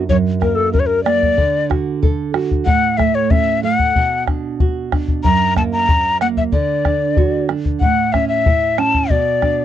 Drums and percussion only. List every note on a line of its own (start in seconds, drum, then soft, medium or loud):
0.09 bombo low soft
0.42 bombo rim soft
0.42 bombo low soft
0.74 bombo low medium
1.06 bombo rim medium
1.23 bombo low soft
1.38 bombo low medium
1.71 bombo rim soft
1.71 bombo low soft
2.03 bombo low medium
2.34 bombo rim medium
2.51 bombo low medium
2.67 bombo low medium
2.99 bombo rim soft
2.99 bombo low medium
3.31 bombo low medium
3.79 bombo low medium
3.96 bombo low medium
4.27 bombo rim medium
4.27 bombo low soft
4.60 bombo low medium
4.92 bombo rim medium
4.92 bombo low medium
5.08 bombo low medium
5.24 bombo low medium
5.57 bombo rim soft
5.57 bombo low medium
5.89 bombo low medium
6.21 bombo rim soft
6.37 bombo low soft
6.52 bombo low medium
6.85 bombo rim soft
6.85 bombo low soft
7.17 bombo low medium
7.49 bombo rim medium
7.65 bombo low medium
7.81 bombo low medium
8.14 bombo rim medium
8.14 bombo low soft
8.46 bombo low medium
8.78 bombo rim medium
8.94 bombo low soft
9.10 bombo low medium
9.42 bombo rim soft
9.42 bombo low soft